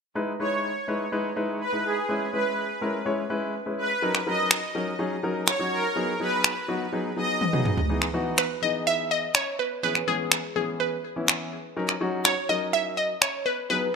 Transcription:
0.15 G#3 D#4 E4 B4
0.39 G#3 D#4 E4 B4 C#5
0.88 G#3 D#4 E4 B4
1.12 G#3 D#4 E4 B4
1.36 G#3 D#4 E4 B4
1.61 B4
1.73 G#3 D#4 E4 B4
1.85 G#4
2.09 G#3 C#4 E4 B4
2.33 G#3 C#4 E4 B4
2.81 G#3 C#4 E4 A#4
3.05 G#3 C#4 E4 C#5
3.30 G#3 C#4 E4 B4
3.66 G#3 C#4 E4 B4
3.78 B4
4.02 F#3 C#4 D#4 A#4
4.15 finger snap
4.27 F#3 C#4 D#4 A#4 D#5
4.51 finger snap
4.75 F#3 C#4 D#4 A#4
4.99 F#3 C#4 D#4 G#4
5.23 F#3 C#4 D#4 A#4
5.48 C#5, finger snap
5.59 F#3 C#4 D#4 F#4
5.72 A#4
5.96 F#3 B3 D#4 G#4
6.20 F#3 B3 D#4 G#4 B4
6.44 finger snap
6.68 F#3 B3 D#4 F#4
6.93 F#3 B3 D#4 G#4
7.17 F#3 B3 D#4 G#4 D#5
7.41 high tom
7.53 F#3 B3 D#4 G#4, mid tom
7.65 mid tom
7.77 floor tom
7.89 E3 B3 D#4 G#4
8.02 finger snap
8.13 E3 B3 D#4 F#4
8.38 B4, finger snap
8.62 E3 B3 D#4 G#4 D#5
8.87 E5
9.11 D#5
9.35 C#5, finger snap
9.59 B4
9.83 E3 B3 C#4 G#4 B4
9.95 finger snap
10.07 E3 B3 C#4 G#4
10.32 finger snap
10.56 E3 B3 C#4 G#4
10.80 B4
11.16 E3 B3 C#4 E4
11.28 finger snap
11.77 F#3 C#4 D#4 A#4
11.89 finger snap
12.01 F#3 C#4 D#4 F#4
12.25 C#5, finger snap
12.49 F#3 C#4 D#4 A#4 D#5
12.73 E5
12.97 D#5
13.22 C#5, finger snap
13.46 B4
13.70 F#3 B3 D#4 G#4 B4

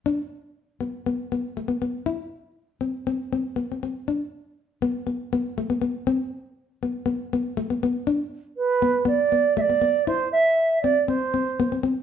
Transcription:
0.06 D4
0.81 B3
1.06 B3
1.32 B3
1.57 A3
1.68 B3
1.82 B3
2.06 E4
2.81 C4
3.07 C4
3.33 C4
3.56 B3
3.72 C4
3.83 C4
4.08 D4
4.82 B3
5.07 B3
5.33 B3
5.58 A3
5.70 B3
5.82 B3
6.07 C4
6.83 B3
7.06 B3
7.33 B3
7.57 A3
7.70 B3
7.83 B3
8.07 D4
8.57 B4
8.82 B3
9.05 B3 D5
9.32 B3
9.57 A3 E5
9.61 D5
9.70 B3
9.82 B3
10.07 E4 C5
10.32 E5
10.82 C4 D5
11.07 C4 C5
11.34 C4
11.60 B3
11.72 C4
11.83 C4

